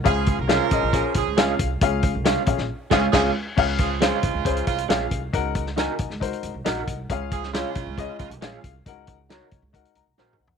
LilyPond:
<<
  \new Staff \with { instrumentName = "Grand piano" } { \time 4/4 \key des \major \tempo 4 = 136 <des' f' aes' f''>8 r8 <des' f' aes' f''>8 <des' f' aes' ees''>8 <des' f' aes' aes''>8 r8 <des' f' aes' f''>8 r8 | <des' f' aes' f''>8 r8 <des' f' aes' f''>8 <des' f' aes' f''>8 r8 <des' f' aes' f''>8 <des' f' aes' f''>8 r8 | <des' f' aes' f''>8 r8 <des' f' aes' c''>8 r8 <des' f' aes' c''>8 r8 <des' f' aes' f''>8 r8 | <ees' ges' bes' ges''>8 r8 <ees' ges' bes' aes''>8 r8 <ees' ges' bes' c''>8 r8 <ees' ges' bes' ges''>8 r8 |
<des' f' aes' f''>8 r8 <des' f' aes' des''>8 r8 <des' f' aes' ees''>8 r8 <des' f' aes' f''>8 r8 | <ees' ges' bes' ges''>8 r8 <ees' ges' bes' des''>8 r8 <ees' ges' bes' ges''>8 bes''8 <ees' ges' bes' c'' aes''>8 ges''8 | }
  \new Staff \with { instrumentName = "Grand piano" } { \clef bass \time 4/4 \key des \major des4. r2 r8 | des4. r2 r8 | des4. r2 r8 | des4. r2 r8 |
des4. r2 r8 | des4. r2 r8 | }
  \new Staff \with { instrumentName = "Clean electric guitar" } { \time 4/4 \key des \major r4 <aes des' f'>8 r4. <aes des' f'>8 r8 | r4 <aes des' f'>8 r4 <aes des' f'>8 <aes des' f'>8 r8 | r4 <aes des' f'>8 r4. <aes des' f'>8 r8 | r4 <ees' ges' bes'>8 r4. <ees' ges' bes'>8 r8 |
r4 <aes des' f'>8 r4. <aes des' f'>8 r8 | r4 <ees' ges' bes'>8 r4. <ees' ges' bes'>8 r8 | }
  \new Staff \with { instrumentName = "Horn section" } { \time 4/4 \key des \major <f des' aes'>8. <bes ges' bes'>16 <f des' bes'>4. <f des' aes'>4 r8 | r2 r8 <f des' aes'>8 <f des' aes'>8 r8 | r8 <f des' aes'>8 <des aes f'>4. <des aes f'>8 r4 | r1 |
r8 <f des' aes'>8 <des aes f'>4. <des aes f'>8 r4 | r1 | }
  \new Staff \with { instrumentName = "Upright bass" } { \clef bass \time 4/4 \key des \major des,8. c,8 r16 bes,,16 bes,,8 r16 c,16 des,8. c,8 | des,8. c,8 r16 bes,,16 bes,,16 r8 des,8 des,8 r8 | des,4~ des,16 r16 c,16 des,16 des,8 c,8 bes,,8 c,8 | des,4~ des,16 r16 c,16 des,8 r16 des,16 c,16 bes,,8 c,8 |
des,4~ des,16 r16 c,16 des,8 r16 des,16 c,16 bes,,8 c,8 | des,4~ des,16 r16 c,16 des,8 r16 des,16 c,16 bes,,8 c,8 | }
  \new DrumStaff \with { instrumentName = "Drums" } \drummode { \time 4/4 <hh bd>8 <hh bd>8 <hh sn>8 <hh bd>8 <hh bd>8 <hh bd>8 <hh sn>8 <hh bd>8 | <hh bd>8 <hh bd>8 <hh sn>8 <hh bd>16 sn16 r8 <cymc bd sn>8 <cymc bd sn>4 | <cymc bd>8 <hh bd>8 <hh sn>8 <hh bd>8 <hh bd>16 hh16 <hh bd>16 hh16 <hh sn>8 <hh bd>8 | <hh bd>8 <hh bd>16 sn16 <hh sn>8 <hh bd>16 sn16 <hh bd>16 hh16 hh8 <hh sn>8 <hh bd>8 |
<hh bd>8 <hh bd>16 sn16 <hh sn>8 <hh bd>8 <hh bd>8 <hh bd>16 hh16 <hh sn>8 <hh bd>8 | <hh bd>8 <hh bd>8 <hh sn>8 <hh bd>8 <hh bd>16 hh16 hh8 \tuplet 3/2 { sn8 toml8 tomfh8 } | }
>>